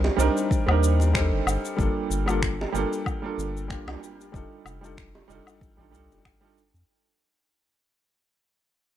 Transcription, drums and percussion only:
0.04 high bongo medium
0.19 cabasa medium
0.37 cabasa soft
0.51 kick loud
0.51 cabasa soft
0.68 low woodblock medium
0.83 cabasa medium
1.00 high bongo medium
1.00 cabasa soft
1.15 finger snap medium
1.15 kick loud
1.15 cabasa soft
1.47 cabasa medium
1.47 low woodblock medium
1.65 cabasa soft
1.79 kick loud
1.79 cabasa soft
2.11 cabasa medium
2.28 cabasa soft
2.28 low woodblock medium
2.42 finger snap medium
2.42 kick medium
2.42 cabasa soft
2.61 high bongo medium
2.75 cabasa medium
2.93 cabasa soft
3.06 kick loud
3.06 cabasa soft
3.06 low woodblock medium
3.39 cabasa medium
3.57 cabasa soft
3.70 finger snap medium
3.70 kick loud
3.70 cabasa soft
3.88 high bongo medium
3.88 low woodblock medium
4.03 cabasa medium
4.21 cabasa soft
4.34 kick loud
4.34 cabasa soft
4.66 cabasa medium
4.66 low woodblock medium
4.84 cabasa soft
4.98 finger snap medium
4.98 kick medium
4.98 cabasa soft
5.15 high bongo medium
5.30 cabasa medium
5.47 cabasa soft
5.47 low woodblock medium
5.61 kick medium
5.61 cabasa soft
5.94 cabasa medium
6.11 high bongo medium
6.11 cabasa soft
6.25 finger snap medium
6.25 kick loud
6.25 cabasa soft
6.25 low woodblock medium
6.58 cabasa medium
6.75 cabasa soft

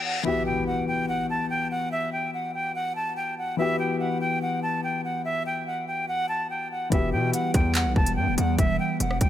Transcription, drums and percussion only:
6.92 kick loud
6.92 closed hi-hat medium
7.33 closed hi-hat medium
7.54 kick loud
7.54 closed hi-hat medium
7.75 clap loud
7.75 closed hi-hat medium
7.96 kick loud
8.06 closed hi-hat medium
8.38 closed hi-hat medium
8.59 kick loud
8.59 closed hi-hat medium
9.00 closed hi-hat medium
9.11 cross-stick medium
9.21 kick loud
9.21 closed hi-hat medium

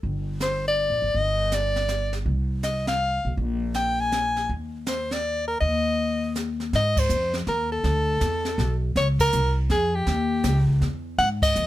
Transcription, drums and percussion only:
0.03 brush sweep soft
0.03 kick soft
0.40 snare medium
0.40 hi-hat pedal medium
1.15 brush sweep soft
1.15 kick soft
1.52 snare medium
1.52 hi-hat pedal medium
1.76 snare soft
1.88 snare medium
1.88 hi-hat pedal soft
2.13 snare soft
2.26 brush sweep soft
2.26 kick soft
2.63 snare medium
2.63 hi-hat pedal soft
2.87 snare soft
3.37 brush sweep soft
3.37 kick soft
3.74 snare medium
3.74 hi-hat pedal soft
4.12 snare medium
4.12 hi-hat pedal soft
4.36 snare soft
4.49 brush sweep soft
4.49 kick soft
4.86 snare medium
4.86 hi-hat pedal medium
5.11 snare soft
5.61 brush sweep soft
5.61 kick soft
6.35 snare soft
6.35 hi-hat pedal medium
6.60 snare soft
6.73 brush sweep soft
6.73 kick soft
6.73 snare soft
6.97 kick medium
6.97 crash medium
7.09 hi-hat pedal medium
7.34 snare soft
7.47 kick soft
7.47 snare soft
7.84 brush sweep soft
7.84 kick soft
7.84 snare soft
8.21 kick soft
8.21 snare medium
8.21 hi-hat pedal medium
8.45 snare soft
8.58 kick soft
8.58 snare soft
8.95 brush sweep soft
8.95 kick soft
8.95 snare soft
9.19 kick medium
9.19 crash medium
9.32 hi-hat pedal medium
9.70 kick soft
9.70 snare soft
10.07 brush sweep medium
10.07 kick soft
10.07 snare soft
10.44 kick soft
10.44 snare medium
10.44 hi-hat pedal medium
10.68 kick soft
10.81 kick soft
10.81 snare soft
11.18 brush sweep medium
11.18 kick soft
11.18 snare soft
11.42 kick medium
11.42 crash medium
11.56 hi-hat pedal medium

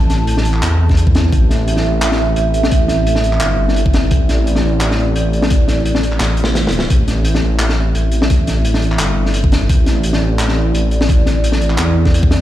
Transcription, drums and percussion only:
0.10 snare soft
0.10 closed hi-hat medium
0.27 closed hi-hat medium
0.37 snare medium
0.45 closed hi-hat soft
0.54 clap soft
0.62 clap loud
0.62 closed hi-hat medium
0.89 kick medium
0.89 snare soft
0.97 closed hi-hat medium
1.07 kick loud
1.15 snare medium
1.15 closed hi-hat medium
1.33 kick loud
1.33 closed hi-hat medium
1.50 snare soft
1.50 closed hi-hat medium
1.68 closed hi-hat medium
1.77 snare soft
2.02 clap loud
2.02 closed hi-hat medium
2.12 snare soft
2.36 closed hi-hat medium
2.54 closed hi-hat medium
2.63 snare medium
2.71 kick loud
2.71 closed hi-hat medium
2.88 snare soft
2.88 closed hi-hat soft
3.07 closed hi-hat medium
3.15 snare soft
3.24 closed hi-hat medium
3.33 clap soft
3.41 clap loud
3.41 closed hi-hat medium
3.68 snare soft
3.76 closed hi-hat medium
3.86 kick loud
3.93 snare medium
3.93 closed hi-hat medium
4.11 kick loud
4.11 closed hi-hat medium
4.29 snare soft
4.29 closed hi-hat medium
4.47 closed hi-hat medium
4.56 snare medium
4.81 clap loud
4.81 closed hi-hat medium
4.91 snare soft
5.16 closed hi-hat medium
5.33 closed hi-hat soft
5.42 snare medium
5.50 kick loud
5.50 closed hi-hat medium
5.68 snare soft
5.68 closed hi-hat medium
5.85 closed hi-hat medium
5.95 snare medium
6.03 closed hi-hat medium
6.12 clap soft
6.20 snare medium
6.20 clap loud
6.20 closed hi-hat medium
6.37 closed hi-hat medium
6.44 snare medium
6.55 snare medium
6.55 closed hi-hat medium
6.67 snare medium
6.72 closed hi-hat medium
6.79 snare loud
6.90 kick loud
6.90 closed hi-hat medium
7.08 snare soft
7.08 closed hi-hat medium
7.25 closed hi-hat medium
7.34 snare medium
7.59 clap loud
7.59 closed hi-hat medium
7.69 snare medium
7.95 closed hi-hat medium
8.12 closed hi-hat medium
8.22 snare medium
8.30 kick loud
8.30 closed hi-hat medium
8.47 snare soft
8.47 closed hi-hat medium
8.65 closed hi-hat medium
8.74 snare medium
8.82 closed hi-hat medium
8.92 clap soft
8.99 clap loud
8.99 closed hi-hat medium
9.26 snare soft
9.34 closed hi-hat medium
9.44 kick loud
9.52 snare medium
9.52 closed hi-hat medium
9.70 kick loud
9.70 closed hi-hat medium
9.86 snare soft
9.86 closed hi-hat soft
10.03 closed hi-hat medium
10.13 snare soft
10.39 clap loud
10.39 closed hi-hat medium
10.48 snare soft
10.75 closed hi-hat medium
10.91 closed hi-hat soft
11.01 snare medium
11.09 kick loud
11.09 closed hi-hat medium
11.26 snare soft
11.26 closed hi-hat medium
11.44 closed hi-hat medium
11.52 snare medium
11.61 closed hi-hat medium
11.70 clap soft
11.78 clap loud
11.78 closed hi-hat medium
12.06 kick medium
12.06 snare soft
12.14 closed hi-hat medium
12.23 kick loud
12.31 snare medium
12.31 closed hi-hat medium

